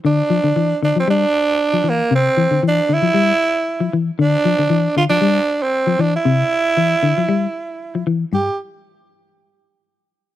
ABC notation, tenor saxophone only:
X:1
M:4/4
L:1/16
Q:"Swing 16ths" 1/4=116
K:Cmix
V:1 name="Tenor saxophone"
D6 D C D6 B,2 | C4 D2 E8 z2 | D6 F D4 C3 D E- | E12- E2 z2 |
G2 z12 z2 |]